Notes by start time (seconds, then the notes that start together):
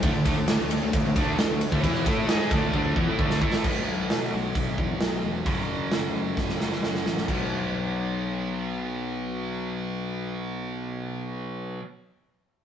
0.03 D2 D3 A3, kick, ride
0.15 D2 D3 A3
0.25 D2 D3 A3, kick, ride
0.38 D2 D3 A3
0.48 D2 D3 A3, snare, ride
0.61 D2 D3 A3
0.71 D2 D3 A3, ride
0.83 D2 D3 A3
0.93 D2 D3 A3, kick, ride
1.06 D2 D3 A3
1.16 D2 D3 A3 D4, kick, ride
1.39 muted overdriven electric guitar stroke, muted distorted electric guitar stroke, muted fingered electric bass stroke, snare, ride
1.50 D2 D3 A3
1.61 ride
1.72 D2 D3 A3, kick
1.84 E2 E3 B3 E4, kick, ride
1.95 snare
2.06 A2 A3 E4 A4, kick, ride
2.29 G#2 G#3 D#4 G#4, snare, ride
2.51 D2 D3 A3 D4, kick, ride
2.73 D2 D3 A3 D4, kick
2.96 E2 E3 B3, kick
3.08 A2 A3 E4
3.18 D2 D3 A3 D4, kick
3.30 snare
3.41 A2 A3 E4 A4, kick
3.53 snare
3.63 B1 B2 F#3 B3, kick, crash
3.89 B1
4.10 B2, snare, open hi-hat
4.34 B1
4.55 B1, kick, open hi-hat
4.78 E2, kick
5.01 B1, snare, open hi-hat
5.24 E1
5.46 F#1 F#2 C#3 F#3, kick, open hi-hat
5.69 F#1
5.92 F#1, snare, open hi-hat
6.14 F#1
6.37 F#1, kick, snare
6.49 snare
6.60 F#1, snare
6.72 snare
6.83 F#1, snare
6.95 snare
7.06 A1, snare
7.17 snare
7.27 B1 B2 F#3 B3, kick, crash